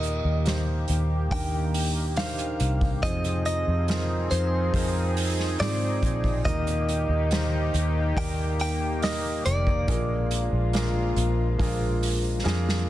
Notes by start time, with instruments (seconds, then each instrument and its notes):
Already playing: fingered electric bass D#2, grand piano A#2 A#3 D#4 G4 A#4, analog synth pad D#3 A#3 G4, clean electric guitar D#5
0.03 hi-hat pedal, open hi-hat
0.25 fingered electric bass D#2
0.45 grand piano A#3 D#4 G4 C5, snare, hi-hat pedal, open hi-hat
0.88 fingered electric bass D#2, hi-hat pedal, open hi-hat
1.31 fingered electric bass D#2, grand piano A#3 D4 D#4 G4 A#4, clean electric guitar G5, kick, hi-hat pedal, open hi-hat
1.74 hi-hat pedal, open hi-hat
1.95 open hi-hat
2.16 grand piano A#3 D4 D#4 G4 C5, clean electric guitar F5, snare, hi-hat pedal, open hi-hat
2.38 hi-hat pedal
2.60 fingered electric bass C2, hi-hat pedal, open hi-hat
2.81 kick, open hi-hat
3.02 fingered electric bass F2, grand piano C3 C4 D#4 F4 G#4 C5, analog synth pad F3 C4 D#4 G#4, clean electric guitar D#5, kick, hi-hat pedal, open hi-hat
3.24 hi-hat pedal
3.45 clean electric guitar D#5, hi-hat pedal, open hi-hat
3.68 fingered electric bass F2
3.88 grand piano C4 D#4 F4 G#4 A#4, snare, hi-hat pedal, open hi-hat
4.31 fingered electric bass F2, clean electric guitar C5, hi-hat pedal, open hi-hat
4.73 fingered electric bass F2, grand piano C4 D#4 F4 G#4 A#4, kick, hi-hat pedal, open hi-hat
5.17 hi-hat pedal, open hi-hat
5.40 snare
5.59 fingered electric bass G#2, grand piano C4 D#4 F4 G#4 C5, clean electric guitar D5, snare, hi-hat pedal, open hi-hat
6.03 fingered electric bass A#1, kick, hi-hat pedal, open hi-hat
6.24 kick, open hi-hat
6.44 fingered electric bass D#2, grand piano A#2 A#3 D#4 G4 A#4, french horn section D#3 D#4, analog synth pad D#3 A#3 G4, clean electric guitar D#5, kick, hi-hat pedal, open hi-hat
6.67 hi-hat pedal
6.89 hi-hat pedal, open hi-hat
7.09 fingered electric bass D#2
7.30 grand piano A#3 D#4 G4 C5, snare, hi-hat pedal, open hi-hat
7.74 fingered electric bass D#2, hi-hat pedal, open hi-hat
8.16 fingered electric bass D#2, grand piano A#3 D#4 G4 A#4 D5, clean electric guitar G5, kick, hi-hat pedal, open hi-hat
8.59 clean electric guitar G5, hi-hat pedal, open hi-hat
9.01 grand piano A#3 D#4 G4 A#4, clean electric guitar D#5, snare, hi-hat pedal, open hi-hat
9.45 fingered electric bass F1, clean electric guitar D5, hi-hat pedal, open hi-hat
9.67 kick
9.87 fingered electric bass A#1, french horn section F3 F4, analog synth pad G#3, grand piano A#3 D4 F4 G#4 A#4, kick, hi-hat pedal, open hi-hat
10.31 hi-hat pedal, open hi-hat
10.52 fingered electric bass A#1
10.73 grand piano A#3 D4 F4 G#4 A#4, snare, hi-hat pedal, open hi-hat
11.16 fingered electric bass A#1, hi-hat pedal, open hi-hat
11.58 fingered electric bass A#1, grand piano A#3 D4 F4 G#4 A#4, kick, hi-hat pedal, open hi-hat
12.03 hi-hat pedal, open hi-hat
12.24 open hi-hat
12.44 fingered electric bass F2, grand piano A#3 D4 F4 G#4 A#4, snare
12.69 snare